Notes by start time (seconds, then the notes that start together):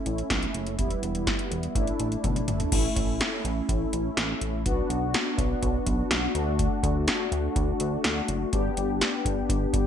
Already playing: A3 C#4 E4
0.06 A1, closed hi-hat
0.18 closed hi-hat
0.30 B1, kick, snare, closed hi-hat
0.43 closed hi-hat
0.54 F#1, closed hi-hat
0.67 closed hi-hat
0.79 E1 G3 B3 E4, kick, closed hi-hat
0.91 closed hi-hat
1.03 E1, closed hi-hat
1.15 closed hi-hat
1.27 kick, snare, closed hi-hat
1.39 closed hi-hat
1.51 E1, closed hi-hat
1.63 closed hi-hat
1.75 A1 A3 D4 E4, kick, closed hi-hat
1.87 closed hi-hat
2.00 A1, closed hi-hat
2.12 closed hi-hat
2.24 B1, kick, closed hi-hat, high tom
2.36 closed hi-hat, mid tom
2.48 G1, closed hi-hat, mid tom
2.60 closed hi-hat, floor tom
2.72 A1 A3 C#4 E4, kick, closed hi-hat, crash
2.96 A1, kick, closed hi-hat
3.21 snare, closed hi-hat
3.45 A1, closed hi-hat
3.69 A1, kick, closed hi-hat
3.93 A1, closed hi-hat
4.17 A1, snare, closed hi-hat
4.41 A1, closed hi-hat
4.66 B1 B3 D4 F#4, kick, closed hi-hat
4.90 B1, closed hi-hat
5.14 snare, closed hi-hat
5.38 B1, kick, closed hi-hat
5.62 B1, kick, closed hi-hat
5.86 B1, kick, closed hi-hat
6.11 B1, snare, closed hi-hat
6.35 D2 A3 D4 F#4, closed hi-hat
6.59 kick, closed hi-hat
6.83 D2, kick, closed hi-hat
7.08 snare, closed hi-hat
7.32 D2, closed hi-hat
7.56 D2, kick, closed hi-hat
7.80 D2, closed hi-hat
8.04 D2, snare, closed hi-hat
8.28 F#1, closed hi-hat
8.53 G1 B3 D4 G4, kick, closed hi-hat
8.77 G1, closed hi-hat
9.01 snare, closed hi-hat
9.25 G1, kick, closed hi-hat
9.49 G1, kick, closed hi-hat
9.73 G1, kick, closed hi-hat